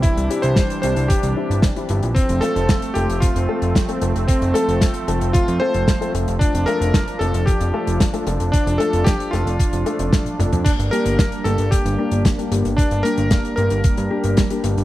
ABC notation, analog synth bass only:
X:1
M:4/4
L:1/16
Q:1/4=113
K:Gdor
V:1 name="Analog synth bass" clef=bass
z C,, z C,, z2 C,, C,, z C,, z G,,, z2 G,,, B,,, | z F,,, z F,,, z2 F,,, F,,, z F,,, z F,,, z2 F,,, F,,, | z F,,, z F,,, z2 F,,, F,,, z F,, z F,,, z2 F,,, F,,, | z F,,, z F,,, z2 F,,, F,,, z F,,, z F,,, z2 F,,, F,,, |
z F,,, z F,,, z2 F,,, F,,, z F,,, z F,,, z2 F,,, F,, | z G,,, z G,,, z2 G,,, G,,, z G,,, z G,,, z2 G,,, G,,, | z G,,, z G,,, z2 G,,, G,,, z G,, z G,,, z2 G,,, G,,, |]